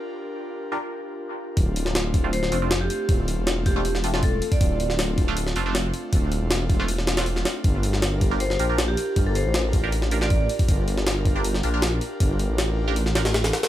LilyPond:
<<
  \new Staff \with { instrumentName = "Vibraphone" } { \time 4/4 \key d \minor \tempo 4 = 158 r1 | r2 c''8 r8. g'8. | r4. g'16 g'16 r4 a'8 r16 d''16~ | d''8. r2. r16 |
r1 | r2 c''8 r8. g'8. | r16 a'16 c''8 r4. r16 d''8. r8 | r1 |
r1 | }
  \new Staff \with { instrumentName = "Analog synth pad" } { \time 4/4 \key d \minor <d' f' g' bes'>1 | <a c' d' f'>8. <a c' d' f'>4.~ <a c' d' f'>16 <a c' d' f'>4. | <a c' d' f'>8. <a c' d' f'>4.~ <a c' d' f'>16 <a c' d' f'>4. | <a c' d' f'>8. <a c' d' f'>4.~ <a c' d' f'>16 <a c' d' f'>4. |
<a c' d' f'>8. <a c' d' f'>4.~ <a c' d' f'>16 <a c' d' f'>4. | <d' f' g' bes'>8. <d' f' g' bes'>4.~ <d' f' g' bes'>16 <d' f' g' bes'>4. | <d' f' g' bes'>8. <d' f' g' bes'>4.~ <d' f' g' bes'>16 <d' f' g' bes'>4. | <d' f' g' bes'>8. <d' f' g' bes'>4.~ <d' f' g' bes'>16 <d' f' g' bes'>4. |
<d' f' g' bes'>8. <d' f' g' bes'>4.~ <d' f' g' bes'>16 <d' f' g' bes'>4. | }
  \new Staff \with { instrumentName = "Synth stab" } { \time 4/4 \key d \minor r4. r16 <d' f' g' bes'>16 r2 | r4. r16 <a c' d' f'>16 r8 <a c' d' f'>16 <a c' d' f'>16 r4 | r4. r16 <a c' d' f'>16 r8 <a c' d' f'>16 <a c' d' f'>16 r4 | r4. r16 <a c' d' f'>16 r8 <a c' d' f'>16 <a c' d' f'>16 r4 |
r4. r16 <a c' d' f'>16 r8. <a c' d' f'>16 r4 | r4. r16 <d' f' g' bes'>16 r8 <d' f' g' bes'>16 <d' f' g' bes'>16 r4 | r4. r16 <d' f' g' bes'>16 r8 <d' f' g' bes'>16 <d' f' g' bes'>16 r4 | r4. r16 <d' f' g' bes'>16 r8 <d' f' g' bes'>16 <d' f' g' bes'>16 r4 |
r4. r16 <d' f' g' bes'>16 r8 <d' f' g' bes'>16 r4 r16 | }
  \new Staff \with { instrumentName = "Detuned saw bass" } { \clef bass \time 4/4 \key d \minor r1 | d,,2 d,,8 f,,4 r8 | d,,8. e,,2~ e,,8. r8 | d,,2 d,,8 f,,4 r8 |
d,,8. e,,2~ e,,8. r8 | g,,2 g,,8 bes,,4 r8 | g,,8. a,,2~ a,,8. r8 | g,,2 g,,8 bes,,4 r8 |
g,,8. a,,2~ a,,8. r8 | }
  \new DrumStaff \with { instrumentName = "Drums" } \drummode { \time 4/4 r4 r4 r4 r4 | <hho bd>8 hho16 sn16 <hho sn>8 <hho bd>8 hho16 sn16 hho8 <hho sn>8 hho8 | <hho bd>8 hho8 <hho sn>8 <hho bd>8 hho16 sn16 hho16 sn16 <hho bd>8 hho16 <hho bd>16 | <hho bd>8 hho16 sn16 <hho sn>8 <hho bd>8 hho16 sn16 hho8 <hho sn>8 hho8 |
<hho bd>8 hho8 <hho sn>8 <hho bd>8 hho16 sn16 <hho sn>16 <hho sn>16 hho16 sn16 <hho sn>8 | <hho bd>8 hho16 sn16 <hho sn>8 <hho bd>8 hho16 sn16 hho8 <hho sn>8 hho8 | <hho bd>8 hho8 <hho sn>8 <hho bd>8 hho16 sn16 hho16 sn16 <hho bd>8 hho16 <hho bd>16 | <hho bd>8 hho16 sn16 <hho sn>8 <hho bd>8 hho16 sn16 hho8 <hho sn>8 hho8 |
<hho bd>8 hho8 <hho sn>4 hho16 sn16 <hho sn>16 <hho sn>16 <hho sn>16 <hho sn>16 <hho sn>16 <hho sn>16 | }
>>